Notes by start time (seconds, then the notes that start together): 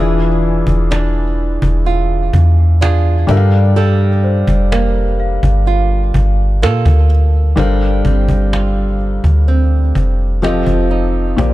Already playing: E1 E3 D4 F4 G#4 D5 E5
0.43 cajon slap
0.67 E1, cajon bass
0.91 D4, cajon slap
1.62 E1, cajon bass
1.85 F4, cajon slap
2.33 E2, cajon bass
2.81 D4 F4 G#4, cajon slap
3.27 G2 G3 D4 A4 A#4 E5, cajon bass
3.37 F5
3.76 G3 A4, cajon slap
4.23 C5, cajon slap
4.48 F1, cajon bass
4.72 A#3, cajon slap
5.20 F5
5.43 G1, cajon bass
5.66 F4, cajon slap
6.14 G1, cajon bass
6.62 A#2 A#3 F4 A4, cajon slap
6.86 D2, cajon bass
7.56 G1 G3 D4 A4 A#4 C5 F5, cajon bass
8.05 G1 C4, cajon bass
8.21 cajon slap
8.29 cajon bass
8.36 cajon slap
8.53 F4, cajon slap
8.99 cajon slap
9.24 D2, cajon bass
9.47 C4, cajon slap
9.95 F1, cajon bass
10.42 F3 C4 G4 A4 D#5, cajon slap
10.67 F1, cajon bass
10.90 D#4, cajon slap
11.37 A#1 A#2 A#3 G4 C5 D5, cajon bass